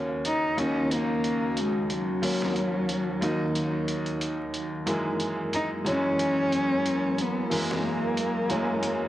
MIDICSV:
0, 0, Header, 1, 5, 480
1, 0, Start_track
1, 0, Tempo, 659341
1, 1626, Time_signature, 4, 2, 24, 8
1, 6611, End_track
2, 0, Start_track
2, 0, Title_t, "Ambient pad"
2, 0, Program_c, 0, 92
2, 0, Note_on_c, 0, 51, 73
2, 0, Note_on_c, 0, 61, 65
2, 0, Note_on_c, 0, 66, 82
2, 1603, Note_off_c, 0, 61, 0
2, 1621, Note_on_c, 0, 63, 67
2, 3515, Note_off_c, 0, 51, 0
2, 3516, Note_off_c, 0, 66, 0
2, 3524, Note_off_c, 0, 63, 0
2, 3540, Note_on_c, 0, 70, 80
2, 3543, Note_on_c, 0, 52, 67
2, 3543, Note_on_c, 0, 54, 70
2, 6611, Note_off_c, 0, 52, 0
2, 6611, Note_off_c, 0, 54, 0
2, 6611, Note_off_c, 0, 70, 0
2, 6611, End_track
3, 0, Start_track
3, 0, Title_t, "Cello"
3, 0, Program_c, 1, 42
3, 194, Note_on_c, 1, 63, 91
3, 430, Note_on_c, 1, 61, 89
3, 441, Note_off_c, 1, 63, 0
3, 680, Note_on_c, 1, 58, 90
3, 691, Note_off_c, 1, 61, 0
3, 1167, Note_on_c, 1, 56, 86
3, 1177, Note_off_c, 1, 58, 0
3, 1405, Note_on_c, 1, 54, 86
3, 1416, Note_off_c, 1, 56, 0
3, 2835, Note_off_c, 1, 54, 0
3, 4036, Note_on_c, 1, 63, 88
3, 4142, Note_off_c, 1, 63, 0
3, 4278, Note_on_c, 1, 61, 107
3, 5248, Note_on_c, 1, 59, 86
3, 5259, Note_off_c, 1, 61, 0
3, 5490, Note_on_c, 1, 58, 89
3, 5501, Note_off_c, 1, 59, 0
3, 6611, Note_off_c, 1, 58, 0
3, 6611, End_track
4, 0, Start_track
4, 0, Title_t, "Upright piano"
4, 0, Program_c, 2, 0
4, 0, Control_c, 2, 64, 127
4, 0, Note_on_c, 2, 39, 77
4, 0, Note_on_c, 2, 54, 70
4, 0, Note_on_c, 2, 58, 68
4, 0, Note_on_c, 2, 61, 81
4, 395, Note_off_c, 2, 39, 0
4, 397, Note_off_c, 2, 54, 0
4, 400, Note_off_c, 2, 58, 0
4, 401, Note_off_c, 2, 61, 0
4, 415, Note_on_c, 2, 39, 87
4, 421, Note_on_c, 2, 54, 76
4, 428, Note_on_c, 2, 58, 77
4, 433, Note_on_c, 2, 63, 91
4, 1594, Note_off_c, 2, 39, 0
4, 1597, Note_off_c, 2, 54, 0
4, 1601, Note_off_c, 2, 58, 0
4, 1603, Note_off_c, 2, 63, 0
4, 1615, Note_on_c, 2, 39, 76
4, 1622, Note_on_c, 2, 54, 73
4, 1626, Note_on_c, 2, 58, 68
4, 1632, Note_on_c, 2, 61, 84
4, 2314, Note_off_c, 2, 39, 0
4, 2318, Note_off_c, 2, 54, 0
4, 2320, Note_off_c, 2, 58, 0
4, 2323, Note_off_c, 2, 61, 0
4, 2336, Note_on_c, 2, 39, 86
4, 2341, Note_on_c, 2, 54, 79
4, 2347, Note_on_c, 2, 58, 81
4, 2351, Note_on_c, 2, 63, 93
4, 3515, Note_off_c, 2, 39, 0
4, 3517, Note_off_c, 2, 54, 0
4, 3520, Note_off_c, 2, 58, 0
4, 3522, Note_off_c, 2, 63, 0
4, 3539, Note_on_c, 2, 42, 77
4, 3543, Note_on_c, 2, 52, 74
4, 3548, Note_on_c, 2, 56, 75
4, 3554, Note_on_c, 2, 58, 82
4, 3556, Control_c, 2, 64, 0
4, 3699, Control_c, 2, 64, 127
4, 4236, Note_off_c, 2, 42, 0
4, 4238, Note_off_c, 2, 52, 0
4, 4241, Note_off_c, 2, 56, 0
4, 4244, Note_off_c, 2, 58, 0
4, 4255, Note_on_c, 2, 42, 87
4, 4263, Note_on_c, 2, 52, 83
4, 4269, Note_on_c, 2, 56, 78
4, 4273, Note_on_c, 2, 61, 98
4, 5434, Note_off_c, 2, 42, 0
4, 5439, Note_off_c, 2, 52, 0
4, 5442, Note_off_c, 2, 56, 0
4, 5443, Note_off_c, 2, 61, 0
4, 5458, Note_on_c, 2, 42, 77
4, 5464, Note_on_c, 2, 52, 73
4, 5470, Note_on_c, 2, 56, 71
4, 5473, Note_on_c, 2, 58, 88
4, 6156, Note_off_c, 2, 42, 0
4, 6159, Note_off_c, 2, 52, 0
4, 6162, Note_off_c, 2, 56, 0
4, 6163, Note_off_c, 2, 58, 0
4, 6179, Note_on_c, 2, 42, 84
4, 6183, Note_on_c, 2, 52, 80
4, 6191, Note_on_c, 2, 56, 80
4, 6195, Note_on_c, 2, 61, 95
4, 6611, Note_off_c, 2, 42, 0
4, 6611, Note_off_c, 2, 52, 0
4, 6611, Note_off_c, 2, 56, 0
4, 6611, Note_off_c, 2, 61, 0
4, 6611, End_track
5, 0, Start_track
5, 0, Title_t, "Drums"
5, 181, Note_on_c, 9, 42, 84
5, 253, Note_off_c, 9, 42, 0
5, 423, Note_on_c, 9, 42, 61
5, 495, Note_off_c, 9, 42, 0
5, 666, Note_on_c, 9, 42, 75
5, 738, Note_off_c, 9, 42, 0
5, 904, Note_on_c, 9, 42, 55
5, 976, Note_off_c, 9, 42, 0
5, 1142, Note_on_c, 9, 42, 76
5, 1215, Note_off_c, 9, 42, 0
5, 1382, Note_on_c, 9, 42, 59
5, 1455, Note_off_c, 9, 42, 0
5, 1622, Note_on_c, 9, 46, 75
5, 1695, Note_off_c, 9, 46, 0
5, 1763, Note_on_c, 9, 38, 44
5, 1836, Note_off_c, 9, 38, 0
5, 1863, Note_on_c, 9, 42, 57
5, 1936, Note_off_c, 9, 42, 0
5, 2104, Note_on_c, 9, 42, 77
5, 2176, Note_off_c, 9, 42, 0
5, 2345, Note_on_c, 9, 42, 60
5, 2418, Note_off_c, 9, 42, 0
5, 2586, Note_on_c, 9, 42, 73
5, 2659, Note_off_c, 9, 42, 0
5, 2825, Note_on_c, 9, 42, 61
5, 2898, Note_off_c, 9, 42, 0
5, 2956, Note_on_c, 9, 42, 33
5, 3029, Note_off_c, 9, 42, 0
5, 3066, Note_on_c, 9, 42, 79
5, 3139, Note_off_c, 9, 42, 0
5, 3304, Note_on_c, 9, 42, 55
5, 3377, Note_off_c, 9, 42, 0
5, 3544, Note_on_c, 9, 42, 80
5, 3617, Note_off_c, 9, 42, 0
5, 3784, Note_on_c, 9, 42, 60
5, 3856, Note_off_c, 9, 42, 0
5, 4026, Note_on_c, 9, 42, 81
5, 4099, Note_off_c, 9, 42, 0
5, 4268, Note_on_c, 9, 42, 57
5, 4341, Note_off_c, 9, 42, 0
5, 4509, Note_on_c, 9, 42, 79
5, 4582, Note_off_c, 9, 42, 0
5, 4750, Note_on_c, 9, 42, 59
5, 4822, Note_off_c, 9, 42, 0
5, 4991, Note_on_c, 9, 42, 78
5, 5064, Note_off_c, 9, 42, 0
5, 5229, Note_on_c, 9, 42, 61
5, 5302, Note_off_c, 9, 42, 0
5, 5470, Note_on_c, 9, 46, 75
5, 5543, Note_off_c, 9, 46, 0
5, 5613, Note_on_c, 9, 38, 46
5, 5686, Note_off_c, 9, 38, 0
5, 5950, Note_on_c, 9, 42, 79
5, 6023, Note_off_c, 9, 42, 0
5, 6186, Note_on_c, 9, 42, 58
5, 6259, Note_off_c, 9, 42, 0
5, 6426, Note_on_c, 9, 42, 76
5, 6499, Note_off_c, 9, 42, 0
5, 6611, End_track
0, 0, End_of_file